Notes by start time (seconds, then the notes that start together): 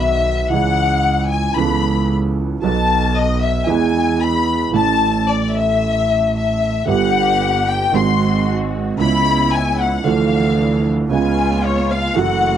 Already playing: B1 B2 D#3 F#3 B3 F#4 E5
0.50 C#2 C#3 E3 G#3 C#4 F#5
0.54 G#4
1.31 G#5
1.56 C#2 C#3 E3 B3 C#4 B5
1.60 A4
2.62 B1 B2 F#3 B3 D#4 A5
2.66 A4
3.15 D#5
3.42 E5
3.66 E2 E3 G#3 B3 G#4 G#5
4.21 B5
4.72 A1 A2 E3 A3 C#4 A4 A5
5.28 D5
5.54 E5
6.35 E5
6.85 G1 G2 D3 G3 B3 D4 G4 F#5
7.69 G5
7.92 G#1 G#2 D#3 G#3 C4 F#4 C6
7.96 F#4
8.97 C#2 C#3 G#3 B3 C#4 E4 B5
9.53 G#5
9.80 F#5
10.04 D2 D3 E3 F3 A3 D4 F5
11.09 C#2 C#3 G#3 B3 C#4 F4 G#5
11.64 C#5
11.90 F5
12.14 F#1 F#2 E3 F#3 A3 C#4 E4 F#4 F#5
12.18 F#4